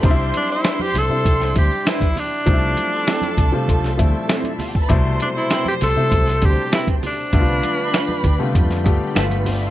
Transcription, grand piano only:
\new Staff \with { instrumentName = "Grand piano" } { \time 4/4 \key c \major \tempo 4 = 99 <g c' d' ees' e'>4~ <g c' d' ees' e'>16 r8 <g c' d' e'>8 r16 <g c' d' e'>4 r8 | <f g a c' ees' e'>4~ <f g a c' ees' e'>16 r8 <f g a c' f'>8 r16 <f g a c' e'>4 r8 | <b, c g a e'>4~ <b, c g a e'>16 r8 <b, c g a e'>8 r16 <b, c g a d'>4 r8 | <d g a b e' f'>4~ <d g a b e' f'>16 r8 <d g a b f'>8 r16 <d g a b g'>8 <d g a b e' f'>8. r16 | }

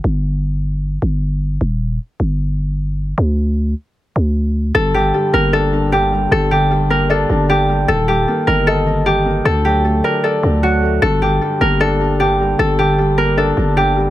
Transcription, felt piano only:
\new Staff \with { instrumentName = "Felt piano" } { \clef bass \time 4/4 \key g \minor \tempo 4 = 153 r1 | r1 | r1 | g,8 d8 g8 bes8 d'8 g,8 d8 g8 |
g,8 d8 g8 bes8 d'8 g,8 d8 g8 | ees8 g8 bes8 ees'8 ees''8 ees8 g8 bes8 | d8 fis8 a8 d'8 d''8 d8 fis8 a8 | g,8 d8 g8 bes8 d'8 g,8 d8 g8 |
g,8 d8 g8 bes8 d'8 g,8 d8 g8 | }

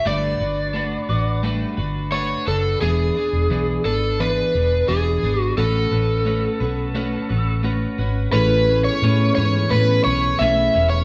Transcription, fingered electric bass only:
\new Staff \with { instrumentName = "Fingered electric bass" } { \clef bass \time 4/4 \key a \major \tempo 4 = 87 g,,8 g,,4 a,,4 g,,4 fis,,8 | e,,8 r16 e,,16 b,,8 gis,,4 e,,8 e,,8 gis,,8 | a,,8 a,,4 b,,4 a,,4 gis,,8 | a,,4 a,8 gis,8 a,8 b,,8 b,,8 e,,8 | }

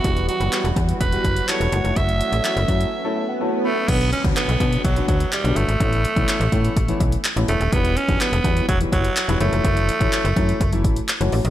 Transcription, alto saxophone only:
\new Staff \with { instrumentName = "Alto saxophone" } { \time 4/4 \key b \minor \tempo 4 = 125 fis'8 fis'4 r8 b'4 cis''4 | e''2. r8 a8 | b8 cis'8 b4 fis8 fis8 g8 a8~ | a2~ a8 r4 a8 |
b8 cis'8 b4 fis8 fis4 a8~ | a2~ a8 r4. | }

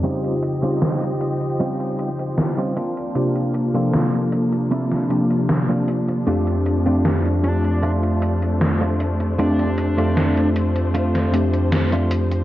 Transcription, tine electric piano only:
\new Staff \with { instrumentName = "Tine electric piano" } { \time 4/4 \key f \major \tempo 4 = 77 <des ees' f' g' c''>8. <des ees' f' g' c''>2~ <des ees' f' g' c''>8. r8 | <c bes d' f' g'>8. <c f bes d' a'>4.~ <c f bes d' a'>16 <c f bes d' g'>4. | <f, a c' d' g'>8. <f, a c' d' g'>2.~ <f, a c' d' g'>16 | <f, a c' d' g'>8. <f, a c' d' a'>4.~ <f, a c' d' a'>16 <f, a c' d' g'>4. | }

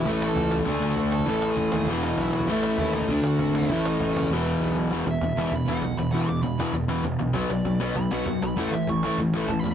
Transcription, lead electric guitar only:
\new Staff \with { instrumentName = "Lead electric guitar" } { \time 4/4 \key e \major \tempo 4 = 197 <b' b''>8 <a' a''>4 r8 <gis' gis''>8. <fis' fis''>8. <a' a''>8 | <a' a''>8. <gis' gis''>8. <gis' gis''>4 <dis' dis''>8 <e' e''>8 <fis' fis''>8 | <e' e''>4 <e' e''>8 <dis' dis''>8 <d' d''>8 <fis' fis''>4 <e' e''>8~ | <e' e''>8 <dis' dis''>4 <cis' cis''>8 <b b'>4. r8 |
r8 e''4. b''8 fis''4 b''8 | fis''8 d'''8 b''4 r2 | r8 d''4. b''8 fis''4 b''8 | fis''8 e''8 cis'''4 r4 \tuplet 3/2 { a''8 b''8 r8 } | }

